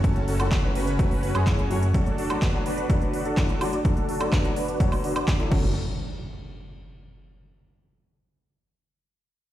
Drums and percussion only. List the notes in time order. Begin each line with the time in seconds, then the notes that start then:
0.04 kick, closed hi-hat
0.16 closed hi-hat
0.28 open hi-hat
0.40 closed hi-hat, high woodblock
0.52 kick, clap, closed hi-hat
0.75 open hi-hat
0.87 closed hi-hat
0.99 kick, closed hi-hat
1.11 open hi-hat
1.23 open hi-hat
1.35 closed hi-hat, high woodblock
1.47 kick, clap, closed hi-hat
1.59 closed hi-hat
1.71 open hi-hat
1.83 closed hi-hat
1.94 kick, closed hi-hat
2.06 closed hi-hat
2.18 open hi-hat
2.30 closed hi-hat, high woodblock
2.42 kick, clap, closed hi-hat
2.66 open hi-hat
2.78 closed hi-hat
2.90 kick, closed hi-hat
3.02 closed hi-hat
3.13 open hi-hat
3.25 closed hi-hat
3.37 kick, clap, closed hi-hat
3.49 closed hi-hat
3.61 open hi-hat, high woodblock
3.73 closed hi-hat
3.85 kick, closed hi-hat
3.97 closed hi-hat
4.09 open hi-hat
4.21 closed hi-hat, high woodblock
4.33 kick, clap, closed hi-hat
4.44 closed hi-hat
4.56 open hi-hat
4.68 closed hi-hat
4.80 kick, closed hi-hat
4.92 open hi-hat, high woodblock
5.04 open hi-hat
5.16 closed hi-hat, high woodblock
5.28 kick, clap, closed hi-hat
5.40 closed hi-hat
5.52 kick, crash